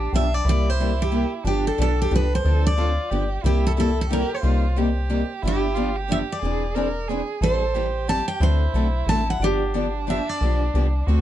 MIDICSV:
0, 0, Header, 1, 5, 480
1, 0, Start_track
1, 0, Tempo, 331675
1, 674, Time_signature, 3, 2, 24, 8
1, 16223, End_track
2, 0, Start_track
2, 0, Title_t, "Steel-string acoustic guitar"
2, 0, Program_c, 0, 25
2, 0, Note_on_c, 0, 67, 88
2, 162, Note_off_c, 0, 67, 0
2, 225, Note_on_c, 0, 76, 89
2, 495, Note_off_c, 0, 76, 0
2, 495, Note_on_c, 0, 74, 84
2, 685, Note_off_c, 0, 74, 0
2, 712, Note_on_c, 0, 74, 91
2, 1007, Note_off_c, 0, 74, 0
2, 1007, Note_on_c, 0, 72, 93
2, 1475, Note_on_c, 0, 67, 78
2, 1479, Note_off_c, 0, 72, 0
2, 1907, Note_off_c, 0, 67, 0
2, 2129, Note_on_c, 0, 67, 82
2, 2414, Note_off_c, 0, 67, 0
2, 2419, Note_on_c, 0, 69, 76
2, 2589, Note_off_c, 0, 69, 0
2, 2629, Note_on_c, 0, 69, 89
2, 2881, Note_off_c, 0, 69, 0
2, 2918, Note_on_c, 0, 67, 82
2, 3079, Note_off_c, 0, 67, 0
2, 3120, Note_on_c, 0, 71, 84
2, 3394, Note_off_c, 0, 71, 0
2, 3401, Note_on_c, 0, 72, 81
2, 3852, Note_off_c, 0, 72, 0
2, 3858, Note_on_c, 0, 74, 94
2, 4752, Note_off_c, 0, 74, 0
2, 5005, Note_on_c, 0, 67, 78
2, 5268, Note_off_c, 0, 67, 0
2, 5305, Note_on_c, 0, 69, 78
2, 5377, Note_off_c, 0, 69, 0
2, 5496, Note_on_c, 0, 69, 82
2, 5753, Note_off_c, 0, 69, 0
2, 5807, Note_on_c, 0, 69, 72
2, 5949, Note_off_c, 0, 69, 0
2, 5975, Note_on_c, 0, 70, 81
2, 6233, Note_off_c, 0, 70, 0
2, 6286, Note_on_c, 0, 72, 79
2, 7703, Note_off_c, 0, 72, 0
2, 7922, Note_on_c, 0, 67, 86
2, 8614, Note_off_c, 0, 67, 0
2, 8854, Note_on_c, 0, 76, 88
2, 8929, Note_off_c, 0, 76, 0
2, 9152, Note_on_c, 0, 74, 74
2, 10287, Note_off_c, 0, 74, 0
2, 10760, Note_on_c, 0, 72, 87
2, 11704, Note_off_c, 0, 72, 0
2, 11709, Note_on_c, 0, 81, 92
2, 11974, Note_off_c, 0, 81, 0
2, 11980, Note_on_c, 0, 79, 85
2, 12187, Note_off_c, 0, 79, 0
2, 12200, Note_on_c, 0, 72, 88
2, 13098, Note_off_c, 0, 72, 0
2, 13153, Note_on_c, 0, 81, 95
2, 13421, Note_off_c, 0, 81, 0
2, 13460, Note_on_c, 0, 78, 83
2, 13647, Note_off_c, 0, 78, 0
2, 13660, Note_on_c, 0, 67, 84
2, 14362, Note_off_c, 0, 67, 0
2, 14617, Note_on_c, 0, 76, 84
2, 14895, Note_off_c, 0, 76, 0
2, 14895, Note_on_c, 0, 74, 76
2, 16223, Note_off_c, 0, 74, 0
2, 16223, End_track
3, 0, Start_track
3, 0, Title_t, "Violin"
3, 0, Program_c, 1, 40
3, 0, Note_on_c, 1, 62, 78
3, 656, Note_on_c, 1, 64, 85
3, 678, Note_off_c, 1, 62, 0
3, 2085, Note_on_c, 1, 62, 81
3, 2107, Note_off_c, 1, 64, 0
3, 3528, Note_on_c, 1, 69, 95
3, 3550, Note_off_c, 1, 62, 0
3, 4006, Note_off_c, 1, 69, 0
3, 4015, Note_on_c, 1, 65, 76
3, 4488, Note_on_c, 1, 67, 85
3, 4510, Note_off_c, 1, 65, 0
3, 4959, Note_on_c, 1, 64, 85
3, 4981, Note_off_c, 1, 67, 0
3, 5912, Note_off_c, 1, 64, 0
3, 5921, Note_on_c, 1, 67, 87
3, 6381, Note_off_c, 1, 67, 0
3, 6396, Note_on_c, 1, 65, 86
3, 6900, Note_on_c, 1, 67, 83
3, 6922, Note_off_c, 1, 65, 0
3, 7848, Note_on_c, 1, 64, 92
3, 7870, Note_off_c, 1, 67, 0
3, 8308, Note_on_c, 1, 65, 88
3, 8330, Note_off_c, 1, 64, 0
3, 8620, Note_on_c, 1, 67, 101
3, 8642, Note_off_c, 1, 65, 0
3, 9277, Note_off_c, 1, 67, 0
3, 9286, Note_on_c, 1, 68, 90
3, 9764, Note_on_c, 1, 70, 90
3, 9786, Note_off_c, 1, 68, 0
3, 10249, Note_on_c, 1, 68, 94
3, 10271, Note_off_c, 1, 70, 0
3, 10732, Note_on_c, 1, 69, 86
3, 10753, Note_off_c, 1, 68, 0
3, 11207, Note_on_c, 1, 67, 80
3, 11228, Note_off_c, 1, 69, 0
3, 12179, Note_on_c, 1, 64, 90
3, 12201, Note_off_c, 1, 67, 0
3, 13626, Note_off_c, 1, 64, 0
3, 13636, Note_on_c, 1, 62, 89
3, 16020, Note_on_c, 1, 66, 74
3, 16042, Note_off_c, 1, 62, 0
3, 16223, Note_off_c, 1, 66, 0
3, 16223, End_track
4, 0, Start_track
4, 0, Title_t, "Steel-string acoustic guitar"
4, 0, Program_c, 2, 25
4, 197, Note_on_c, 2, 53, 73
4, 204, Note_on_c, 2, 50, 77
4, 207, Note_on_c, 2, 59, 81
4, 208, Note_on_c, 2, 62, 87
4, 218, Note_on_c, 2, 67, 84
4, 352, Note_off_c, 2, 53, 0
4, 356, Note_off_c, 2, 50, 0
4, 357, Note_off_c, 2, 59, 0
4, 358, Note_off_c, 2, 62, 0
4, 363, Note_off_c, 2, 67, 0
4, 673, Note_on_c, 2, 48, 56
4, 679, Note_on_c, 2, 55, 59
4, 683, Note_on_c, 2, 58, 66
4, 692, Note_on_c, 2, 67, 68
4, 698, Note_on_c, 2, 64, 65
4, 967, Note_off_c, 2, 48, 0
4, 971, Note_off_c, 2, 55, 0
4, 973, Note_off_c, 2, 58, 0
4, 977, Note_off_c, 2, 67, 0
4, 980, Note_off_c, 2, 64, 0
4, 1160, Note_on_c, 2, 48, 66
4, 1160, Note_on_c, 2, 55, 70
4, 1173, Note_on_c, 2, 64, 78
4, 1177, Note_on_c, 2, 67, 79
4, 1181, Note_on_c, 2, 58, 76
4, 1314, Note_off_c, 2, 48, 0
4, 1314, Note_off_c, 2, 55, 0
4, 1321, Note_off_c, 2, 64, 0
4, 1323, Note_off_c, 2, 67, 0
4, 1324, Note_off_c, 2, 58, 0
4, 1630, Note_on_c, 2, 55, 87
4, 1631, Note_on_c, 2, 48, 75
4, 1636, Note_on_c, 2, 64, 83
4, 1637, Note_on_c, 2, 67, 96
4, 1641, Note_on_c, 2, 58, 82
4, 1789, Note_off_c, 2, 55, 0
4, 1790, Note_off_c, 2, 48, 0
4, 1792, Note_off_c, 2, 64, 0
4, 1793, Note_off_c, 2, 67, 0
4, 1795, Note_off_c, 2, 58, 0
4, 2116, Note_on_c, 2, 50, 57
4, 2120, Note_on_c, 2, 53, 70
4, 2122, Note_on_c, 2, 59, 70
4, 2125, Note_on_c, 2, 62, 66
4, 2125, Note_on_c, 2, 67, 75
4, 2409, Note_off_c, 2, 50, 0
4, 2411, Note_off_c, 2, 53, 0
4, 2412, Note_off_c, 2, 59, 0
4, 2413, Note_off_c, 2, 62, 0
4, 2413, Note_off_c, 2, 67, 0
4, 2595, Note_on_c, 2, 53, 81
4, 2600, Note_on_c, 2, 50, 77
4, 2605, Note_on_c, 2, 67, 85
4, 2607, Note_on_c, 2, 59, 85
4, 2609, Note_on_c, 2, 62, 80
4, 2751, Note_off_c, 2, 53, 0
4, 2754, Note_off_c, 2, 50, 0
4, 2756, Note_off_c, 2, 67, 0
4, 2757, Note_off_c, 2, 59, 0
4, 2759, Note_off_c, 2, 62, 0
4, 3082, Note_on_c, 2, 50, 81
4, 3087, Note_on_c, 2, 53, 83
4, 3088, Note_on_c, 2, 62, 84
4, 3096, Note_on_c, 2, 67, 94
4, 3098, Note_on_c, 2, 59, 86
4, 3235, Note_off_c, 2, 50, 0
4, 3238, Note_off_c, 2, 53, 0
4, 3238, Note_off_c, 2, 62, 0
4, 3242, Note_off_c, 2, 67, 0
4, 3243, Note_off_c, 2, 59, 0
4, 3559, Note_on_c, 2, 50, 67
4, 3566, Note_on_c, 2, 53, 62
4, 3574, Note_on_c, 2, 60, 61
4, 3574, Note_on_c, 2, 62, 60
4, 3581, Note_on_c, 2, 69, 58
4, 3850, Note_off_c, 2, 50, 0
4, 3854, Note_off_c, 2, 53, 0
4, 3858, Note_off_c, 2, 60, 0
4, 3858, Note_off_c, 2, 62, 0
4, 3861, Note_off_c, 2, 69, 0
4, 4039, Note_on_c, 2, 50, 74
4, 4052, Note_on_c, 2, 53, 72
4, 4053, Note_on_c, 2, 60, 71
4, 4059, Note_on_c, 2, 62, 73
4, 4069, Note_on_c, 2, 69, 89
4, 4193, Note_off_c, 2, 50, 0
4, 4199, Note_off_c, 2, 53, 0
4, 4200, Note_off_c, 2, 60, 0
4, 4203, Note_off_c, 2, 62, 0
4, 4208, Note_off_c, 2, 69, 0
4, 4503, Note_on_c, 2, 50, 76
4, 4507, Note_on_c, 2, 53, 75
4, 4508, Note_on_c, 2, 62, 91
4, 4515, Note_on_c, 2, 59, 75
4, 4519, Note_on_c, 2, 67, 86
4, 4665, Note_off_c, 2, 50, 0
4, 4667, Note_off_c, 2, 53, 0
4, 4667, Note_off_c, 2, 62, 0
4, 4671, Note_off_c, 2, 59, 0
4, 4673, Note_off_c, 2, 67, 0
4, 4984, Note_on_c, 2, 48, 56
4, 4991, Note_on_c, 2, 58, 64
4, 4993, Note_on_c, 2, 55, 60
4, 5003, Note_on_c, 2, 64, 66
4, 5003, Note_on_c, 2, 67, 65
4, 5282, Note_off_c, 2, 48, 0
4, 5286, Note_off_c, 2, 58, 0
4, 5287, Note_off_c, 2, 55, 0
4, 5291, Note_off_c, 2, 64, 0
4, 5291, Note_off_c, 2, 67, 0
4, 5475, Note_on_c, 2, 48, 65
4, 5482, Note_on_c, 2, 55, 74
4, 5485, Note_on_c, 2, 58, 69
4, 5488, Note_on_c, 2, 67, 78
4, 5494, Note_on_c, 2, 64, 70
4, 5631, Note_off_c, 2, 48, 0
4, 5634, Note_off_c, 2, 55, 0
4, 5635, Note_off_c, 2, 58, 0
4, 5637, Note_off_c, 2, 67, 0
4, 5640, Note_off_c, 2, 64, 0
4, 5956, Note_on_c, 2, 48, 82
4, 5961, Note_on_c, 2, 55, 76
4, 5966, Note_on_c, 2, 58, 88
4, 5970, Note_on_c, 2, 64, 85
4, 5971, Note_on_c, 2, 67, 84
4, 6111, Note_off_c, 2, 48, 0
4, 6114, Note_off_c, 2, 55, 0
4, 6116, Note_off_c, 2, 58, 0
4, 6118, Note_off_c, 2, 64, 0
4, 6118, Note_off_c, 2, 67, 0
4, 6418, Note_on_c, 2, 58, 63
4, 6419, Note_on_c, 2, 48, 64
4, 6423, Note_on_c, 2, 55, 59
4, 6429, Note_on_c, 2, 67, 61
4, 6437, Note_on_c, 2, 63, 67
4, 6719, Note_off_c, 2, 48, 0
4, 6719, Note_off_c, 2, 58, 0
4, 6721, Note_off_c, 2, 55, 0
4, 6724, Note_off_c, 2, 67, 0
4, 6728, Note_off_c, 2, 63, 0
4, 6912, Note_on_c, 2, 48, 72
4, 6913, Note_on_c, 2, 58, 74
4, 6914, Note_on_c, 2, 55, 77
4, 6916, Note_on_c, 2, 63, 79
4, 6921, Note_on_c, 2, 67, 82
4, 7068, Note_off_c, 2, 48, 0
4, 7069, Note_off_c, 2, 58, 0
4, 7070, Note_off_c, 2, 55, 0
4, 7071, Note_off_c, 2, 63, 0
4, 7073, Note_off_c, 2, 67, 0
4, 7374, Note_on_c, 2, 48, 75
4, 7376, Note_on_c, 2, 55, 80
4, 7385, Note_on_c, 2, 58, 85
4, 7387, Note_on_c, 2, 63, 89
4, 7389, Note_on_c, 2, 67, 89
4, 7540, Note_off_c, 2, 48, 0
4, 7541, Note_off_c, 2, 55, 0
4, 7545, Note_off_c, 2, 58, 0
4, 7546, Note_off_c, 2, 63, 0
4, 7547, Note_off_c, 2, 67, 0
4, 7859, Note_on_c, 2, 53, 62
4, 7861, Note_on_c, 2, 50, 64
4, 7864, Note_on_c, 2, 59, 70
4, 7875, Note_on_c, 2, 62, 74
4, 7881, Note_on_c, 2, 67, 62
4, 8159, Note_off_c, 2, 53, 0
4, 8160, Note_off_c, 2, 50, 0
4, 8161, Note_off_c, 2, 59, 0
4, 8167, Note_off_c, 2, 62, 0
4, 8170, Note_off_c, 2, 67, 0
4, 8327, Note_on_c, 2, 50, 78
4, 8330, Note_on_c, 2, 59, 80
4, 8340, Note_on_c, 2, 62, 83
4, 8341, Note_on_c, 2, 53, 82
4, 8347, Note_on_c, 2, 67, 84
4, 8496, Note_off_c, 2, 50, 0
4, 8498, Note_off_c, 2, 59, 0
4, 8502, Note_off_c, 2, 62, 0
4, 8503, Note_off_c, 2, 53, 0
4, 8506, Note_off_c, 2, 67, 0
4, 8800, Note_on_c, 2, 50, 83
4, 8806, Note_on_c, 2, 53, 82
4, 8812, Note_on_c, 2, 59, 79
4, 8815, Note_on_c, 2, 62, 78
4, 8817, Note_on_c, 2, 67, 90
4, 8972, Note_off_c, 2, 50, 0
4, 8976, Note_off_c, 2, 53, 0
4, 8978, Note_off_c, 2, 59, 0
4, 8980, Note_off_c, 2, 62, 0
4, 8981, Note_off_c, 2, 67, 0
4, 9285, Note_on_c, 2, 52, 61
4, 9289, Note_on_c, 2, 60, 69
4, 9291, Note_on_c, 2, 68, 62
4, 9292, Note_on_c, 2, 62, 66
4, 9304, Note_on_c, 2, 72, 75
4, 9592, Note_off_c, 2, 52, 0
4, 9594, Note_off_c, 2, 60, 0
4, 9595, Note_off_c, 2, 68, 0
4, 9596, Note_off_c, 2, 62, 0
4, 9601, Note_off_c, 2, 72, 0
4, 9774, Note_on_c, 2, 60, 87
4, 9775, Note_on_c, 2, 52, 69
4, 9779, Note_on_c, 2, 62, 77
4, 9781, Note_on_c, 2, 72, 79
4, 9792, Note_on_c, 2, 68, 75
4, 9940, Note_off_c, 2, 52, 0
4, 9940, Note_off_c, 2, 60, 0
4, 9942, Note_off_c, 2, 62, 0
4, 9943, Note_off_c, 2, 72, 0
4, 9948, Note_off_c, 2, 68, 0
4, 10262, Note_on_c, 2, 52, 79
4, 10263, Note_on_c, 2, 60, 87
4, 10264, Note_on_c, 2, 68, 77
4, 10271, Note_on_c, 2, 72, 87
4, 10272, Note_on_c, 2, 62, 76
4, 10424, Note_off_c, 2, 52, 0
4, 10424, Note_off_c, 2, 60, 0
4, 10424, Note_off_c, 2, 68, 0
4, 10428, Note_off_c, 2, 72, 0
4, 10429, Note_off_c, 2, 62, 0
4, 10737, Note_on_c, 2, 55, 65
4, 10741, Note_on_c, 2, 52, 61
4, 10741, Note_on_c, 2, 60, 59
4, 10753, Note_on_c, 2, 64, 68
4, 10757, Note_on_c, 2, 69, 66
4, 11038, Note_off_c, 2, 55, 0
4, 11040, Note_off_c, 2, 52, 0
4, 11040, Note_off_c, 2, 60, 0
4, 11046, Note_off_c, 2, 64, 0
4, 11048, Note_off_c, 2, 69, 0
4, 11207, Note_on_c, 2, 55, 73
4, 11208, Note_on_c, 2, 52, 72
4, 11211, Note_on_c, 2, 60, 80
4, 11214, Note_on_c, 2, 64, 80
4, 11226, Note_on_c, 2, 69, 88
4, 11376, Note_off_c, 2, 55, 0
4, 11377, Note_off_c, 2, 52, 0
4, 11378, Note_off_c, 2, 60, 0
4, 11380, Note_off_c, 2, 64, 0
4, 11386, Note_off_c, 2, 69, 0
4, 11685, Note_on_c, 2, 52, 75
4, 11691, Note_on_c, 2, 55, 86
4, 11698, Note_on_c, 2, 60, 77
4, 11703, Note_on_c, 2, 69, 78
4, 11706, Note_on_c, 2, 64, 81
4, 11855, Note_off_c, 2, 52, 0
4, 11858, Note_off_c, 2, 55, 0
4, 11862, Note_off_c, 2, 60, 0
4, 11864, Note_off_c, 2, 69, 0
4, 11866, Note_off_c, 2, 64, 0
4, 12170, Note_on_c, 2, 50, 65
4, 12180, Note_on_c, 2, 57, 65
4, 12186, Note_on_c, 2, 60, 63
4, 12187, Note_on_c, 2, 66, 66
4, 12187, Note_on_c, 2, 69, 64
4, 12475, Note_off_c, 2, 50, 0
4, 12480, Note_off_c, 2, 57, 0
4, 12483, Note_off_c, 2, 60, 0
4, 12483, Note_off_c, 2, 66, 0
4, 12483, Note_off_c, 2, 69, 0
4, 12675, Note_on_c, 2, 50, 70
4, 12681, Note_on_c, 2, 57, 73
4, 12692, Note_on_c, 2, 69, 90
4, 12693, Note_on_c, 2, 60, 81
4, 12693, Note_on_c, 2, 66, 84
4, 12830, Note_off_c, 2, 50, 0
4, 12833, Note_off_c, 2, 57, 0
4, 12839, Note_off_c, 2, 60, 0
4, 12839, Note_off_c, 2, 66, 0
4, 12839, Note_off_c, 2, 69, 0
4, 13170, Note_on_c, 2, 50, 85
4, 13176, Note_on_c, 2, 57, 81
4, 13180, Note_on_c, 2, 60, 78
4, 13180, Note_on_c, 2, 66, 83
4, 13189, Note_on_c, 2, 69, 88
4, 13318, Note_off_c, 2, 50, 0
4, 13321, Note_off_c, 2, 57, 0
4, 13323, Note_off_c, 2, 60, 0
4, 13323, Note_off_c, 2, 66, 0
4, 13327, Note_off_c, 2, 69, 0
4, 13621, Note_on_c, 2, 50, 67
4, 13628, Note_on_c, 2, 59, 64
4, 13641, Note_on_c, 2, 53, 70
4, 13641, Note_on_c, 2, 62, 64
4, 13642, Note_on_c, 2, 67, 74
4, 13921, Note_off_c, 2, 50, 0
4, 13924, Note_off_c, 2, 59, 0
4, 13930, Note_off_c, 2, 53, 0
4, 13930, Note_off_c, 2, 62, 0
4, 13931, Note_off_c, 2, 67, 0
4, 14115, Note_on_c, 2, 50, 81
4, 14122, Note_on_c, 2, 53, 75
4, 14122, Note_on_c, 2, 62, 78
4, 14129, Note_on_c, 2, 59, 84
4, 14131, Note_on_c, 2, 67, 78
4, 14270, Note_off_c, 2, 50, 0
4, 14274, Note_off_c, 2, 53, 0
4, 14274, Note_off_c, 2, 62, 0
4, 14277, Note_off_c, 2, 59, 0
4, 14278, Note_off_c, 2, 67, 0
4, 14594, Note_on_c, 2, 50, 79
4, 14604, Note_on_c, 2, 59, 82
4, 14610, Note_on_c, 2, 53, 78
4, 14611, Note_on_c, 2, 62, 87
4, 14615, Note_on_c, 2, 67, 97
4, 14750, Note_off_c, 2, 50, 0
4, 14755, Note_off_c, 2, 59, 0
4, 14758, Note_off_c, 2, 53, 0
4, 14759, Note_off_c, 2, 62, 0
4, 14760, Note_off_c, 2, 67, 0
4, 15087, Note_on_c, 2, 50, 59
4, 15100, Note_on_c, 2, 53, 71
4, 15100, Note_on_c, 2, 59, 68
4, 15100, Note_on_c, 2, 62, 58
4, 15113, Note_on_c, 2, 67, 73
4, 15373, Note_off_c, 2, 50, 0
4, 15380, Note_off_c, 2, 53, 0
4, 15380, Note_off_c, 2, 59, 0
4, 15380, Note_off_c, 2, 62, 0
4, 15387, Note_off_c, 2, 67, 0
4, 15572, Note_on_c, 2, 53, 79
4, 15575, Note_on_c, 2, 50, 73
4, 15587, Note_on_c, 2, 67, 80
4, 15592, Note_on_c, 2, 62, 80
4, 15593, Note_on_c, 2, 59, 75
4, 15719, Note_off_c, 2, 53, 0
4, 15721, Note_off_c, 2, 50, 0
4, 15727, Note_off_c, 2, 67, 0
4, 15729, Note_off_c, 2, 59, 0
4, 15729, Note_off_c, 2, 62, 0
4, 16041, Note_on_c, 2, 50, 81
4, 16046, Note_on_c, 2, 57, 74
4, 16051, Note_on_c, 2, 69, 83
4, 16053, Note_on_c, 2, 60, 91
4, 16055, Note_on_c, 2, 66, 88
4, 16194, Note_off_c, 2, 50, 0
4, 16196, Note_off_c, 2, 57, 0
4, 16199, Note_off_c, 2, 69, 0
4, 16200, Note_off_c, 2, 60, 0
4, 16201, Note_off_c, 2, 66, 0
4, 16223, End_track
5, 0, Start_track
5, 0, Title_t, "FM bass"
5, 0, Program_c, 3, 39
5, 186, Note_on_c, 3, 35, 77
5, 598, Note_off_c, 3, 35, 0
5, 651, Note_on_c, 3, 36, 92
5, 1812, Note_off_c, 3, 36, 0
5, 2092, Note_on_c, 3, 31, 88
5, 2485, Note_off_c, 3, 31, 0
5, 2587, Note_on_c, 3, 35, 86
5, 2998, Note_off_c, 3, 35, 0
5, 3061, Note_on_c, 3, 36, 75
5, 3474, Note_off_c, 3, 36, 0
5, 3543, Note_on_c, 3, 38, 91
5, 4315, Note_off_c, 3, 38, 0
5, 4507, Note_on_c, 3, 31, 84
5, 4893, Note_off_c, 3, 31, 0
5, 4980, Note_on_c, 3, 36, 90
5, 6137, Note_off_c, 3, 36, 0
5, 6414, Note_on_c, 3, 36, 98
5, 7573, Note_off_c, 3, 36, 0
5, 7863, Note_on_c, 3, 31, 88
5, 9018, Note_off_c, 3, 31, 0
5, 9301, Note_on_c, 3, 28, 91
5, 10457, Note_off_c, 3, 28, 0
5, 10726, Note_on_c, 3, 33, 89
5, 11888, Note_off_c, 3, 33, 0
5, 12162, Note_on_c, 3, 38, 96
5, 12558, Note_off_c, 3, 38, 0
5, 12646, Note_on_c, 3, 35, 79
5, 13065, Note_off_c, 3, 35, 0
5, 13121, Note_on_c, 3, 33, 77
5, 13542, Note_off_c, 3, 33, 0
5, 13600, Note_on_c, 3, 31, 92
5, 14765, Note_off_c, 3, 31, 0
5, 15068, Note_on_c, 3, 35, 86
5, 15478, Note_off_c, 3, 35, 0
5, 15546, Note_on_c, 3, 36, 86
5, 15957, Note_off_c, 3, 36, 0
5, 16024, Note_on_c, 3, 38, 86
5, 16223, Note_off_c, 3, 38, 0
5, 16223, End_track
0, 0, End_of_file